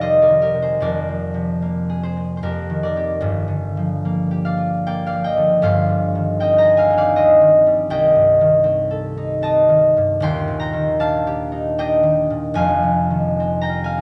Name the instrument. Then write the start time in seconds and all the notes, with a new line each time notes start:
harp
Already playing: F1 F2 C3 D#3 G#3 D#4 F4 G4 G#4 A#4 D5 F5 G5 G#5
0.01 G3 C5 D#5
0.22 A#4 D5
0.28 D#3
0.42 G4 A#4
0.54 C3
0.62 G#4 C5
0.80 F1 F2 A#4 D5
1.09 F3
1.34 C3
1.62 A#3
1.90 G#4
2.03 G#4 C5
2.17 C4
2.37 C5
2.43 F2 G4 A#4
2.70 D#3
2.83 A#4 D5
2.96 C4 G4
3.21 G1 G2
3.48 D3
3.77 F3
4.05 A#3
4.31 G4
4.45 D5 F5
4.57 F4
4.86 A#3 D5 G5
5.07 D5 F5
5.13 F3
5.24 D#5 G5
5.37 D3
5.62 G1 G2 C5 F5
5.89 G3
6.15 D#3
6.40 C4 D#5 G5
6.58 G5 A#5
6.64 G#4
6.77 F5 G#5
6.90 D#4
6.98 D5 F5
7.16 C4 C5 D#5
7.41 D#3
7.66 G3
7.90 C2 D#5 G5
8.16 G2
8.41 D#3
8.64 C4
8.91 A4
9.17 D#4
9.42 C4 D#5 A5
9.69 D#3
9.97 G2
10.20 D#1 D#2 G5 C6
10.48 A#2
10.60 G5 A#5
10.73 D#3
10.99 D4 F5 A5
11.27 G4
11.52 D#4
11.78 D4 D#5 G5
12.03 D#3
12.30 A#2
12.54 F1 F2 F5 G#5
12.83 C3
13.10 D#3
13.40 C4
13.61 G5 A#5
13.69 F4
13.84 F5 G#5
13.98 D#4